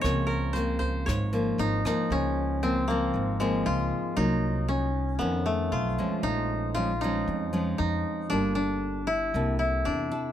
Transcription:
<<
  \new Staff \with { instrumentName = "Koto" } { \time 4/4 \key des \major \tempo 4 = 116 des''8 bes'8 c''8 c''8 des''4 ees'8 ees'8 | des'4 c'8 bes4 aes8 f'4 | ees'4 des'4 ces'8 a8 f'4 | ees'4 f'8 ees'4. ees'4 |
d'8 d'4 fes'4 e'8 d'4 | }
  \new Staff \with { instrumentName = "Nylon-string guitar" } { \time 4/4 \key des \major << { <f bes c'>4 <f bes c'>4. <f bes>4 <f bes>8~ | <f bes>4 <f bes c'>8 <f bes c'>4 <f bes c'>4. | <ges bes ees'>4. r8 <ees a cis'>4 r8 <f gis cis'>8~ | <f gis cis'>4 <f aes des'>8 <f aes des'>4 <f aes des'>4. |
<bes f' a'>4. r8 <bes e' a'>4. <e' a'>8 | } \\ { des2 aes,2 | des2 aes,2 | r2 f,2 | bes,2 f,2 |
g2 c2 | } >> }
  \new Staff \with { instrumentName = "Upright bass" } { \clef bass \time 4/4 \key des \major des,2 aes,,4 aes,,8 r8 | des,2 aes,,4 des,8 r8 | c,2 f,4 ces,8 r8 | bes,,2 f,4 f,8 r8 |
g,,2 c,4 e,8 r8 | }
  \new DrumStaff \with { instrumentName = "Drums" } \drummode { \time 4/4 <hh bd ss>8 hh8 hh8 <hh bd>8 <hh bd ss>8 hh8 hh8 <hh bd ss>8 | r4 r4 r4 r4 | r4 r4 r4 r4 | r4 r4 r4 r4 |
r4 r4 r4 r4 | }
>>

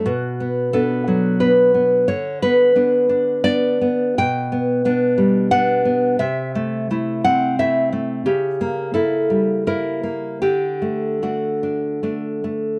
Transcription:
\new Staff \with { instrumentName = "Nylon-string guitar" } { \time 3/4 \key b \minor \tempo 4 = 87 << { fis'4 a'4 b'4 | cis''8 b'4. d''4 | \key g \major g''2 fis''4 | e''4. fis''8 e''8 r8 |
g'4 a'4 ais'4 | g'4 fis'4. r8 | } \\ { b,8 b8 <b d'>8 fis8 <b d'>8 b8 | d8 b8 <b d'>8 d'8 <b d'>8 b8 | b,8 b8 <b d'>8 g8 <b d'>8 b8 | c8 a8 <a e'>8 c'8 <a e'>8 a8 |
cis8 ais8 <ais e'>8 g8 <ais e'>8 ais8 | d8 a8 <a d'>8 d'8 <a d'>8 a8 | } >> }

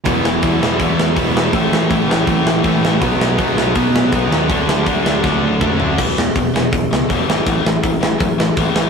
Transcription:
<<
  \new Staff \with { instrumentName = "Distorted electric guitar" } { \time 4/4 \key e \major \tempo 4 = 162 <e gis b e'>4 <e gis b e'>8 <e gis b e'>8 <e gis b e'>4 <e gis b e'>8 <e gis b e'>8 | <a, e a cis' e'>4 <a, e a cis' e'>8 <a, e a cis' e'>8 <a, e a cis' e'>4 <a, e a cis' e'>8 <a, e a cis' e'>8 | <b, fis b dis'>4 <b, fis b dis'>8 <b, fis b dis'>8 <b, fis b dis'>4 <b, fis b dis'>8 <b, fis b dis'>8 | <d fis a d'>4 <d fis a d'>8 <d fis a d'>8 <d fis a d'>4 <d fis a d'>8 <d fis a d'>8 |
r1 | r1 | }
  \new Staff \with { instrumentName = "Distorted electric guitar" } { \clef bass \time 4/4 \key e \major <e, b, e>4 <e, b, e>8 <e, b, e>8 <e, b, e>4 <e, b, e>8 <e, b, e>8 | <a, e a>4 <a, e a>8 <a, e a>8 <a, e a>4 <a, e a>8 <a, e a>8 | <b, fis b>4 <b, fis b>8 <b, fis b>8 <b, fis b>4 <b, fis b>8 <b, fis b>8 | <d a d'>4 <d a d'>8 <d a d'>8 <d a d'>4 <d a d'>8 <d a d'>8 |
<e, b, e>8 <e, b,>8 <e, b,>8 <e, b,>8 <e, b,>8 <e, b,>8 <e, b, e>8 <e, b, e>8 | <a, e a>8 <a, e>8 <a, e>8 <a, e>8 <a, e>8 <a, e>8 <a, e a>8 <a, e a>8 | }
  \new Staff \with { instrumentName = "Picked electric bass" } { \clef bass \time 4/4 \key e \major e,,8 e,,8 e,8 e,,8 e,4 e,,8 e,,8 | a,,8 a,,8 a,,8 a,,8 a,,8 a,,8 a,,8 a,,8 | b,,8 b,,8 b,8 b,,8 b,4 b,,8 dis,8 | d,8 d,8 d,8 d,8 d,8 d,8 d,8 d,8 |
e,,8 e,,8 e,,8 e,,8 e,,8 cis,8 e,,8 gis,,8 | a,,8 a,,8 a,,8 a,,8 fis,8 a,,8 a,,8 a,,8 | }
  \new DrumStaff \with { instrumentName = "Drums" } \drummode { \time 4/4 <hho bd>8 sn8 <hho bd>8 sn8 <hho bd>8 sn8 <hho bd>8 sn8 | <hho bd>8 sn8 <hho bd>8 sn8 <hho bd>8 sn8 <hho bd>8 sn8 | <hho bd>8 sn8 <hho bd>8 sn8 <hho bd>8 sn8 <hho bd>8 sn8 | <hho bd>8 sn8 <hho bd>8 sn8 <bd sn>4 <bd toml>8 tomfh8 |
<cymc bd>8 sn8 <hho bd>8 sn8 <hho bd>8 sn8 <hho bd>8 sn8 | <hho bd>8 sn8 <hho bd>8 sn8 <hho bd>8 sn8 <hho bd>8 sn8 | }
>>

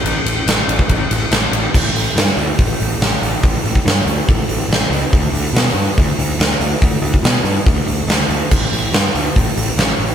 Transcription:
<<
  \new Staff \with { instrumentName = "Picked electric bass" } { \clef bass \time 4/4 \key a \mixolydian \tempo 4 = 142 a,,8 a,,8 a,,8 a,,8 a,,8 a,,8 a,,8 a,,8 | a,,8 a,,8 g,8 d,8 a,,8 a,,8 a,,8 a,,8 | a,,8 a,,8 g,8 d,8 a,,8 a,,8 a,,8 cis,8 | d,8 d,8 b,8 g,8 d,8 d,8 d,8 d,8 |
d,8 d,8 b,8 g,8 d,8 d,8 d,8 d,8 | a,,8 a,,8 g,8 d,8 a,,8 a,,8 a,,8 a,,8 | }
  \new DrumStaff \with { instrumentName = "Drums" } \drummode { \time 4/4 cymr8 cymr8 <cymr sn>8 cymr16 bd16 <bd cymr>8 cymr8 <cymr sn>8 cymr8 | <cymc bd>8 hho8 <hho sn>16 sn16 hho8 <hho bd>8 hho8 <hho sn>8 hho8 | <hho bd>8 hho16 bd16 <hho sn>8 hho8 <hho bd>8 hho8 <hho sn>16 sn16 hho8 | <hho bd>8 hho8 <hho sn>16 sn16 hho8 <hho bd>8 hho8 <hho sn>16 sn16 hho8 |
<hho bd>8 hho16 bd16 <hho sn>8 hho8 <hho bd>8 hho8 <hho sn>16 sn16 hho8 | <cymc bd>8 hho8 <hho sn>8 hho8 <hho bd>8 hho8 <hho sn>8 hho8 | }
>>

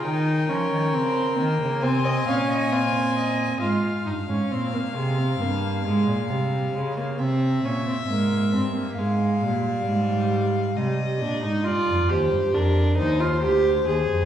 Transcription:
<<
  \new Staff \with { instrumentName = "Violin" } { \time 4/4 \key aes \major \tempo 4 = 67 g''2 aes''2 | \key f \minor f''1 | e''2 f''2 | ees''4 d''8 c''8 bes'8 c''4. | }
  \new Staff \with { instrumentName = "Violin" } { \time 4/4 \key aes \major bes'2 c''16 ees''16 f''16 ees''16 f''8 ees''8 | \key f \minor r1 | r1 | r1 | }
  \new Staff \with { instrumentName = "Viola" } { \time 4/4 \key aes \major ees'8 des'8 c'8 bes8 c'8 des'8 c'4 | \key f \minor f'8 ees'16 des'16 c'16 bes16 aes16 c'16 bes8 aes8 g8 aes16 bes16 | c'8 des'16 c'16 bes8 c'16 bes16 aes8 g4. | g8 d'16 ees'16 f'8 g'8 d'8 ees'16 f'16 g'8 aes'8 | }
  \new Staff \with { instrumentName = "Cello" } { \clef bass \time 4/4 \key aes \major ees8 f16 ees16 des8 ees16 des16 c8 bes,4. | \key f \minor aes,8 g,16 aes,16 bes,8 c8 g,8 aes,16 bes,16 c8 des8 | c8 bes,8 aes,8 g,8 aes,8 bes,8 aes,4 | c8 bes,16 aes,16 g,16 f,16 ees,16 g,16 f,8 ees,8 d,8 ees,16 f,16 | }
>>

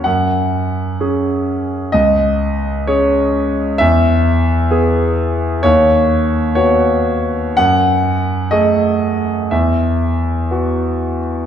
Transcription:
<<
  \new Staff \with { instrumentName = "Grand piano" } { \time 6/8 \key e \major \tempo 4. = 63 fis''2. | dis''4. cis''4. | e''2. | cis''4. cis''4. |
fis''4. dis''4. | e''2~ e''8 r8 | }
  \new Staff \with { instrumentName = "Grand piano" } { \time 6/8 \key e \major fis,4. <cis' gis'>4. | cis,4. <cis' gis'>4. | e,4. <b gis'>4. | dis,4. <b fis'>4. |
fis,4. <a gis'>4. | e,4. <b fis'>4. | }
>>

